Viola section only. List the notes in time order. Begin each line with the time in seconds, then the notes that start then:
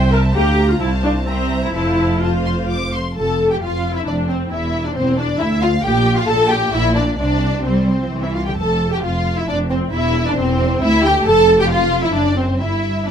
Already playing: C5
0.12 A#4
0.34 G4
0.70 F4
0.81 E4
1.03 D4
1.27 C4
1.64 E4
1.74 E4
2.23 F4
3.17 A4
3.50 G4
3.61 F4
3.96 E4
4.06 D4
4.28 C4
4.51 E4
4.85 D4
4.96 C4
5.18 D4
5.40 E4
5.63 F4
5.85 G4
6.17 F4
6.28 A4
6.50 G4
6.73 E4
6.96 D4
7.19 D4
7.66 C4
8.23 E4
8.34 F4
8.46 G4
8.57 A4
8.92 G4
9.03 F4
9.37 E4
9.49 D4
9.71 C4
9.94 E4
10.27 D4
10.38 C4
10.82 E4
11.05 G4
11.27 A4
11.59 G4
11.71 F4
12.03 E4
12.14 D4
12.37 C4
12.60 E4
13.07 D4